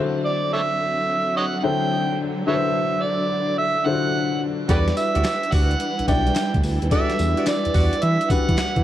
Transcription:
0.00 0.87 D3 medium
0.00 4.65 D3 medium
0.00 4.65 F#3 medium
0.00 2.17 C4 medium
0.00 0.87 E4 medium
0.00 0.88 F#4 medium
0.00 0.88 A4 medium
0.00 0.88 C5 medium
0.25 0.51 D5 medium
0.53 0.61 A4 medium
0.53 0.61 C#5 medium
0.53 1.32 E5 loud
1.37 1.44 C#5 medium
1.37 1.44 D#5 medium
1.37 1.59 F#5 loud
1.59 2.19 D3 medium
1.59 1.66 F#5 medium
1.63 2.20 F#3 medium
1.63 2.20 E4 medium
1.63 2.20 A4 medium
1.63 2.20 C5 medium
1.63 2.19 G5 loud
2.19 8.82 D4 medium
2.47 3.24 D3 medium
2.47 3.24 E4 medium
2.47 3.25 F#4 medium
2.47 3.25 A4 medium
2.47 2.56 A4 medium
2.47 2.56 B4 medium
2.47 2.54 C#5 medium
2.47 3.04 E5 medium
2.54 3.28 C5 medium
3.03 3.57 D5 loud
3.58 3.88 E5 loud
3.86 4.42 D3 medium
3.86 4.42 E4 medium
3.86 3.95 F4 medium
3.86 4.42 A4 medium
3.86 4.42 C5 medium
3.86 4.41 F#5 loud
3.93 4.45 F#4 medium
4.69 4.92 E2 loud
4.69 8.82 E3 medium
4.69 8.82 G3 medium
4.69 5.46 D4 medium
4.69 8.84 E4 medium
4.69 4.90 F#4 medium
4.69 5.47 F#4 medium
4.69 4.90 G4 medium
4.69 5.47 G4 medium
4.69 4.76 G4 medium
4.69 4.78 A4 medium
4.69 4.79 B4 medium
4.69 4.90 D5 loud
4.69 4.95 D5 medium
4.69 kick loud
4.69 closed hi-hat medium
4.69 tambourine medium
4.77 5.50 B4 medium
4.88 snare medium
4.88 closed hi-hat medium
4.97 5.54 E5 loud
4.97 closed hi-hat medium
4.97 tambourine medium
5.15 5.23 D2 medium
5.15 5.29 F#4 medium
5.15 5.29 G4 medium
5.15 5.29 D5 medium
5.15 closed hi-hat medium
5.24 snare loud
5.24 clap medium
5.24 closed hi-hat medium
5.24 tambourine loud
5.43 closed hi-hat medium
5.52 5.75 D2 loud
5.52 5.73 F#4 medium
5.52 5.73 G4 medium
5.52 5.73 D5 medium
5.52 6.08 F#5 loud
5.52 kick medium
5.52 open hi-hat medium
5.52 tambourine medium
5.71 closed hi-hat medium
5.80 closed hi-hat medium
5.99 6.03 B1 soft
5.99 closed hi-hat medium
6.07 6.31 B1 loud
6.07 6.64 D4 medium
6.07 6.64 E4 medium
6.07 6.28 F#4 medium
6.07 6.29 G4 medium
6.07 6.64 G4 medium
6.07 6.29 D5 medium
6.07 6.65 D5 medium
6.07 6.60 G5 loud
6.07 kick loud
6.07 closed hi-hat medium
6.07 tambourine medium
6.27 closed hi-hat medium
6.36 snare loud
6.36 clap medium
6.36 clap loud
6.36 closed hi-hat medium
6.36 tambourine loud
6.54 6.62 D2 medium
6.54 kick medium
6.54 closed hi-hat soft
6.63 6.79 D2 medium
6.63 open hi-hat medium
6.63 tambourine medium
6.82 6.90 D#2 medium
6.82 closed hi-hat soft
6.91 7.69 D4 medium
6.91 7.12 F#4 medium
6.91 7.69 F#4 medium
6.91 7.12 G4 medium
6.91 7.69 G4 medium
6.91 7.69 A4 medium
6.91 7.12 D5 loud
6.91 7.43 E5 medium
6.91 kick loud
6.91 closed hi-hat medium
6.91 tambourine medium
7.10 snare medium
7.10 closed hi-hat medium
7.19 7.35 E2 loud
7.19 closed hi-hat medium
7.19 tambourine medium
7.37 7.51 F#4 medium
7.37 7.51 G4 medium
7.37 7.51 D5 medium
7.37 closed hi-hat medium
7.46 8.05 D5 loud
7.46 snare loud
7.46 clap medium
7.46 closed hi-hat medium
7.46 tambourine loud
7.65 7.69 E2 soft
7.65 closed hi-hat medium
7.74 7.90 E2 medium
7.74 7.95 F#4 medium
7.74 7.95 G4 medium
7.74 7.95 D5 medium
7.74 kick medium
7.74 open hi-hat medium
7.74 tambourine medium
7.93 closed hi-hat medium
8.02 8.18 E3 loud
8.02 8.32 E5 loud
8.02 closed hi-hat medium
8.21 closed hi-hat medium
8.30 8.38 E3 medium
8.30 8.84 D4 medium
8.30 8.84 F#4 medium
8.30 8.84 G4 medium
8.30 8.84 B4 medium
8.30 8.84 F#5 loud
8.30 kick loud
8.30 closed hi-hat medium
8.30 tambourine medium
8.49 8.56 E3 loud
8.49 kick medium
8.49 closed hi-hat medium
8.58 snare loud
8.58 clap medium
8.58 clap loud
8.58 closed hi-hat medium
8.58 tambourine loud
8.76 8.84 E3 loud
8.76 kick medium
8.76 closed hi-hat soft

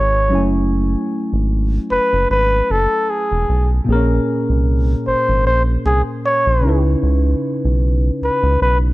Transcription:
0.00 0.34 G#1 medium
0.00 0.26 G#3 medium
0.00 0.27 D#4 medium
0.00 0.28 F#4 medium
0.00 0.29 G#4 medium
0.00 0.30 B4 medium
0.00 0.54 C#5 medium
0.29 0.96 F#1 medium
0.29 3.42 F#3 medium
0.29 3.43 C#4 medium
0.33 3.44 E4 medium
0.33 3.45 G#5 medium
0.37 3.46 A3 medium
1.33 1.79 G#1 medium
1.91 1.99 F#1 soft
1.91 2.27 B4 medium
2.13 2.27 F#1 loud
2.30 2.62 G#1 medium
2.30 2.72 B4 loud
2.70 2.87 F#1 medium
2.70 3.11 A4 medium
3.10 3.70 G#4 medium
3.31 3.45 E1 medium
3.49 3.81 B1 medium
3.84 4.20 A#1 loud
3.84 6.58 A#2 medium
3.84 6.59 A#3 medium
3.84 3.95 C4 medium
3.90 6.61 G#4 medium
3.90 6.62 A#4 medium
3.95 6.61 C#4 medium
4.49 4.95 C2 medium
5.07 5.15 G#1 soft
5.07 5.43 C5 medium
5.29 5.47 G#1 medium
5.46 5.78 A#1 medium
5.46 5.63 C5 medium
5.85 6.03 C2 medium
5.85 6.02 G#4 medium
6.25 6.82 C#5 medium
6.47 6.66 A#1 medium
6.61 6.96 C#2 medium
6.61 8.94 C#3 medium
6.61 8.94 C#4 medium
6.61 8.94 D#4 medium
6.67 8.94 E4 medium
6.67 8.94 B4 medium
7.03 7.35 C#2 loud
7.65 8.11 B1 medium
8.22 8.30 C#2 soft
8.22 8.59 B4 medium
8.43 8.57 C#2 medium
8.61 8.93 B1 medium
8.61 8.78 B4 medium

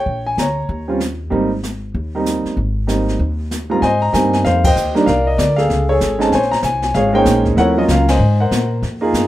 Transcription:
0.00 0.39 C#5 medium
0.00 0.27 G5 medium
0.06 0.35 A#1 medium
0.06 brush sweep soft
0.06 kick soft
0.27 0.38 G#5 medium
0.37 0.67 D2 medium
0.37 0.97 C#5 medium
0.37 0.97 A#5 medium
0.37 snare medium
0.37 hi-hat pedal medium
0.69 1.28 D#2 medium
0.69 brush sweep soft
0.69 kick soft
0.88 0.99 G3 soft
0.88 0.99 C4 soft
0.88 0.99 C#4 soft
0.88 0.99 F4 medium
1.00 snare medium
1.00 hi-hat pedal medium
1.30 1.91 G#1 medium
1.30 1.49 G3 medium
1.30 1.49 A#3 medium
1.30 1.49 C4 medium
1.30 1.49 D#4 medium
1.30 brush sweep soft
1.30 kick soft
1.63 snare soft
1.63 hi-hat pedal soft
1.94 2.42 D#2 medium
1.94 brush sweep soft
1.94 kick soft
2.15 2.55 G3 medium
2.15 2.55 A#3 soft
2.15 2.55 C4 soft
2.15 2.55 D#4 medium
2.26 snare medium
2.26 hi-hat pedal medium
2.45 muted upright bass stroke soft
2.45 snare soft
2.57 3.16 G#1 medium
2.57 brush sweep soft
2.57 kick soft
2.87 3.19 G3 soft
2.87 3.19 A#3 soft
2.87 3.19 C4 soft
2.87 3.19 D#4 medium
2.87 snare medium
2.87 hi-hat pedal medium
3.08 snare soft
3.19 3.79 D#2 medium
3.19 brush sweep soft
3.19 kick soft
3.51 snare soft
3.51 hi-hat pedal medium
3.70 3.80 G#2 medium
3.70 3.80 G3 medium
3.70 3.81 A#3 soft
3.70 3.81 C4 soft
3.70 3.81 F4 medium
3.70 3.83 A#5 medium
3.82 4.12 G#2 medium
3.82 4.41 C5 medium
3.82 4.42 D#5 medium
3.82 4.02 G#5 loud
3.82 brush sweep medium
3.82 kick soft
3.82 snare soft
4.02 4.14 A#5 medium
4.13 4.44 G2 medium
4.13 4.60 G3 medium
4.13 4.60 A#3 medium
4.13 4.60 C4 medium
4.13 4.61 D#4 medium
4.13 4.32 G#5 medium
4.13 kick soft
4.13 snare medium
4.13 hi-hat pedal medium
4.33 4.39 G#5 medium
4.33 snare soft
4.45 4.75 F2 medium
4.45 4.66 C5 medium
4.45 4.65 F5 medium
4.45 brush sweep soft
4.45 kick soft
4.45 snare soft
4.64 5.05 C5 medium
4.64 5.05 D#5 medium
4.64 4.94 G5 medium
4.64 kick medium
4.64 crash medium
4.76 5.06 D#2 medium
4.76 hi-hat pedal medium
4.95 5.05 G3 medium
4.95 5.05 A#3 medium
4.95 5.06 D4 medium
4.95 5.06 D#4 medium
4.95 snare soft
5.06 5.37 C2 medium
5.06 5.66 A#4 medium
5.06 5.37 D5 medium
5.06 5.27 F5 medium
5.06 brush sweep soft
5.06 kick soft
5.06 snare soft
5.27 5.39 D#5 medium
5.38 5.68 D2 medium
5.38 5.58 D5 medium
5.38 kick soft
5.38 snare medium
5.38 hi-hat pedal medium
5.56 5.89 G#4 medium
5.56 5.90 A4 medium
5.56 5.89 F5 medium
5.56 snare soft
5.69 6.00 C#2 medium
5.69 brush sweep soft
5.69 kick soft
5.69 snare soft
5.89 6.30 G#4 medium
5.89 6.30 A4 medium
5.89 6.21 C#5 medium
6.01 6.31 G#1 medium
6.01 kick soft
6.01 snare medium
6.01 hi-hat pedal medium
6.19 6.30 G#3 medium
6.19 6.30 C4 medium
6.19 6.30 C#4 medium
6.19 6.30 D#4 medium
6.19 6.33 A5 medium
6.19 snare soft
6.32 6.62 A#1 medium
6.32 6.92 C5 medium
6.32 6.92 C#5 medium
6.32 6.52 G#5 medium
6.32 brush sweep soft
6.32 kick soft
6.32 snare soft
6.42 snare soft
6.52 6.57 A#5 medium
6.52 snare soft
6.63 6.93 C2 medium
6.63 6.82 G#5 medium
6.63 kick soft
6.63 snare medium
6.63 hi-hat pedal soft
6.82 6.94 G#5 medium
6.82 snare soft
6.94 7.25 G#1 medium
6.94 7.54 G#4 medium
6.94 7.15 C#5 medium
6.94 7.15 F5 medium
6.94 brush sweep soft
6.94 kick soft
6.94 snare soft
7.13 7.54 G#3 medium
7.13 7.54 A#3 medium
7.13 7.54 C#4 medium
7.13 7.54 D#4 medium
7.13 7.55 C5 medium
7.13 7.55 C#5 medium
7.13 7.43 G5 loud
7.25 7.56 A#1 medium
7.25 kick soft
7.25 snare medium
7.25 hi-hat pedal medium
7.45 kick medium
7.45 snare soft
7.56 7.87 D#2 medium
7.56 7.74 F3 medium
7.56 7.74 A3 medium
7.56 7.74 C4 soft
7.56 7.75 E4 medium
7.56 8.16 A#4 medium
7.56 8.17 C#5 medium
7.56 7.76 F#5 medium
7.56 brush sweep medium
7.56 kick soft
7.56 snare soft
7.77 8.04 F#3 medium
7.77 8.04 A#3 soft
7.77 8.04 C#4 soft
7.77 8.04 F4 medium
7.77 7.83 D#5 medium
7.88 8.18 C#2 loud
7.88 8.08 F5 medium
7.88 kick soft
7.88 snare medium
7.88 hi-hat pedal medium
8.08 8.40 C5 medium
8.08 8.67 D#5 medium
8.08 8.37 G#5 medium
8.08 snare medium
8.08 ride medium
8.19 8.49 G#2 medium
8.19 brush sweep soft
8.40 8.80 A#4 medium
8.40 8.80 C5 medium
8.40 8.69 F#5 medium
8.51 8.81 A#2 medium
8.51 kick soft
8.51 snare medium
8.51 hi-hat pedal medium
8.82 9.12 F2 medium
8.82 brush sweep soft
8.82 kick soft
8.82 snare soft
9.01 9.27 A#3 medium
9.01 9.27 D#4 medium
9.01 9.27 F4 medium
9.01 9.27 G#4 medium
9.13 9.27 G2 medium
9.13 kick soft
9.13 snare medium
9.13 hi-hat pedal medium

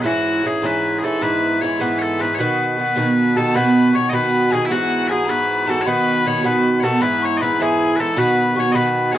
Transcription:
0.02 0.42 G#2 medium
0.02 0.44 E3 medium
0.02 0.44 C#4 medium
0.02 0.45 E4 medium
0.02 0.07 B4 medium
0.07 0.47 F#4 medium
0.43 0.61 G#2 medium
0.43 0.63 E3 medium
0.43 0.63 C#4 medium
0.43 0.63 E4 medium
0.43 0.66 G#4 medium
0.62 1.02 G#2 medium
0.62 1.03 E3 medium
0.62 1.03 C#4 medium
0.62 1.04 E4 medium
0.62 0.99 B4 medium
0.99 1.20 G#2 medium
0.99 1.04 G#4 soft
1.04 1.21 E3 medium
1.04 1.22 C#4 medium
1.04 1.22 E4 medium
1.04 1.22 A4 medium
1.21 1.60 G#2 medium
1.21 1.61 E3 medium
1.21 1.63 B3 medium
1.21 1.62 E4 medium
1.21 1.61 B4 loud
1.61 1.78 G#2 soft
1.61 1.79 E3 medium
1.61 1.80 B3 medium
1.61 1.80 E4 medium
1.61 1.81 C#5 medium
1.79 2.18 G#2 medium
1.79 2.19 E3 medium
1.79 2.21 B3 medium
1.79 2.20 E4 medium
1.79 1.98 B4 medium
1.98 2.21 A4 medium
1.98 2.02 C#5 medium
2.19 2.38 G#2 medium
2.19 2.39 E3 medium
2.19 2.39 B3 medium
2.19 2.40 E4 medium
2.19 2.34 B4 medium
2.34 2.38 C#5 loud
2.38 2.76 B2 medium
2.38 2.77 D#3 medium
2.38 2.79 B3 medium
2.38 2.80 F#4 medium
2.38 3.36 B4 loud
2.77 2.94 B2 soft
2.77 2.95 D#3 medium
2.77 2.96 B3 medium
2.77 2.96 F#4 medium
2.96 3.34 B2 medium
2.96 3.36 D#3 medium
2.96 3.37 B3 medium
2.96 3.38 F#4 medium
3.35 3.53 B2 medium
3.35 3.54 D#3 medium
3.35 3.55 B3 medium
3.35 3.55 F#4 medium
3.35 3.56 A4 medium
3.35 3.56 A5 medium
3.54 3.92 B2 medium
3.54 3.93 D#3 medium
3.54 3.95 B3 medium
3.54 3.95 F#4 medium
3.54 3.95 B4 loud
3.54 3.93 B5 medium
3.93 4.11 B2 medium
3.93 4.11 D#3 soft
3.93 4.12 B3 medium
3.93 4.12 F#4 medium
3.93 4.09 C#5 medium
3.93 4.11 C#6 medium
4.09 4.50 B2 medium
4.09 4.51 D#3 medium
4.09 4.53 B3 medium
4.09 4.14 D#5 loud
4.09 4.53 B5 medium
4.13 4.53 F#4 medium
4.13 4.53 B4 loud
4.51 4.69 B2 medium
4.51 4.70 D#3 medium
4.51 4.70 B3 medium
4.51 4.70 F#4 medium
4.51 4.65 G#4 medium
4.51 4.68 G#5 medium
4.65 4.71 E4 medium
4.65 5.11 F#5 medium
4.69 5.08 G#2 medium
4.69 5.09 E3 medium
4.69 5.11 B3 medium
4.69 5.08 F#4 loud
4.69 5.11 F#4 medium
5.08 5.27 G#2 medium
5.08 5.28 E3 soft
5.08 5.28 B3 medium
5.08 5.30 G#4 medium
5.08 5.11 B4 medium
5.08 5.29 G#5 medium
5.12 5.29 F#4 medium
5.27 5.65 G#2 medium
5.27 5.66 E3 medium
5.27 5.68 B3 medium
5.27 5.68 F#4 medium
5.27 5.70 B4 medium
5.27 5.69 B5 medium
5.66 5.85 G#2 medium
5.66 5.86 E3 medium
5.66 5.85 B3 medium
5.66 5.86 F#4 medium
5.66 5.81 A4 medium
5.66 5.87 A5 medium
5.81 5.88 C#5 medium
5.86 6.24 B2 medium
5.86 6.25 D#3 medium
5.86 6.27 B3 medium
5.86 6.27 F#4 medium
5.86 6.27 B4 loud
5.86 6.44 B5 medium
6.26 6.42 B2 medium
6.26 6.43 D#3 medium
6.26 6.44 B3 medium
6.26 6.44 F#4 medium
6.26 6.46 C#5 loud
6.43 6.81 B2 medium
6.43 6.82 D#3 medium
6.43 6.84 B3 medium
6.43 6.84 F#4 medium
6.43 6.80 B4 medium
6.43 6.86 B5 medium
6.80 7.00 B2 medium
6.80 7.01 D#3 medium
6.80 7.02 A4 medium
6.80 6.84 C#5 medium
6.84 7.01 B3 medium
6.84 7.03 F#4 medium
6.84 7.03 A5 medium
7.01 7.40 G#2 medium
7.01 7.41 E3 medium
7.01 7.42 B3 medium
7.01 7.42 E4 medium
7.01 7.25 B4 loud
7.01 7.24 B5 medium
7.23 7.37 C#5 medium
7.23 7.43 C#6 medium
7.37 7.58 G#2 medium
7.37 7.62 B4 medium
7.37 7.41 D#5 medium
7.41 7.59 E3 medium
7.41 7.60 B3 medium
7.41 7.60 E4 medium
7.41 7.63 B5 medium
7.60 7.97 G#2 medium
7.60 7.98 E3 medium
7.60 7.99 B3 medium
7.60 7.99 E4 medium
7.60 7.96 G#4 medium
7.60 8.01 G#5 medium
7.96 8.16 G#2 medium
7.96 8.16 E3 medium
7.96 8.16 B3 medium
7.96 8.18 E4 medium
7.96 8.18 A4 medium
7.96 8.00 B4 medium
7.96 8.16 A5 medium
8.16 8.54 B2 medium
8.16 8.55 D#3 medium
8.16 8.56 B3 medium
8.16 8.57 F#4 medium
8.16 8.59 B4 loud
8.16 8.37 B5 medium
8.38 8.58 B5 medium
8.55 8.72 B2 medium
8.55 8.73 D#3 medium
8.55 8.73 B3 medium
8.55 8.74 F#4 medium
8.55 8.76 C#6 medium
8.59 8.72 C#5 medium
8.72 9.12 B2 medium
8.72 9.13 D#3 medium
8.72 9.14 B3 medium
8.72 9.14 F#4 medium
8.72 9.12 B4 medium
8.72 8.75 D#5 medium
8.72 9.15 B5 medium
9.12 9.18 B2 medium
9.12 9.18 D#3 medium
9.12 9.18 G#4 medium
9.12 9.15 C#5 medium
9.12 9.18 G#5 medium

